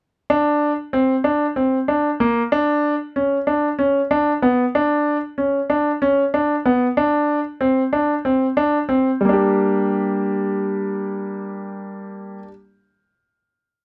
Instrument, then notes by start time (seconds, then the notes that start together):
grand piano
0.30 D4
0.93 C4
1.24 D4
1.56 C4
1.88 D4
2.20 A#3
2.52 D4
3.16 C#4
3.47 D4
3.79 C#4
4.11 D4
4.42 B3
4.75 D4
5.38 C#4
5.70 D4
6.02 C#4
6.34 D4
6.66 B3
6.97 D4
7.61 C4
7.93 D4
8.25 C4
8.57 D4
8.89 C4
9.21 G3
9.25 A#3
9.29 D4 G4